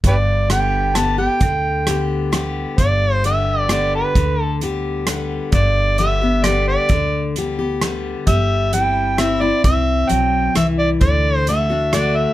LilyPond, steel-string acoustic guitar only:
\new Staff \with { instrumentName = "Steel-string acoustic guitar" } { \time 3/4 \key g \major \tempo 4 = 131 << { r4 <d g b g'>4 <d g b g'>8 <b g'>8 | r4 <d g b g'>4 <d g b g'>4 | r4 <d g b g'>4 <d g b g'>4 | r4 <d g b g'>4 <d g b g'>4 |
r4 <d g b g'>8 <b g'>8 <d g b g'>4 | r4 <d g b g'>8 <b g'>8 <d g b g'>4 | r4 <g c' e'>4 <g c' e'>8 <c' e'>8 | r2. |
r4 <d a d' fis'>8 <d' fis'>8 <d a d' fis'>4 | } \\ { g,2 r4 | d2 r4 | g,2 r4 | d2 r4 |
g,2 r4 | d2 r4 | g2 r4 | c'4 fis4 e4 |
d2 r4 | } >> }